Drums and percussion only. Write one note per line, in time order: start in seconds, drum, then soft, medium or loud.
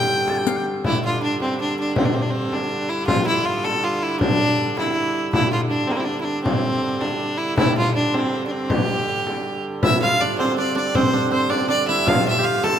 0.09 frame drum soft
0.28 riq soft
0.28 frame drum medium
0.47 riq medium
0.47 frame drum soft
0.84 frame drum medium
1.40 frame drum medium
1.96 frame drum medium
2.52 frame drum medium
3.08 frame drum medium
3.65 frame drum medium
4.21 frame drum medium
4.59 frame drum soft
4.78 frame drum medium
5.33 frame drum medium
5.90 frame drum medium
6.46 frame drum medium
7.01 frame drum medium
7.58 frame drum medium
8.14 frame drum medium
8.70 frame drum medium
9.08 frame drum soft
9.27 frame drum medium
9.83 frame drum medium
10.39 frame drum medium
10.95 frame drum medium
11.52 frame drum medium
12.08 frame drum medium
12.64 frame drum medium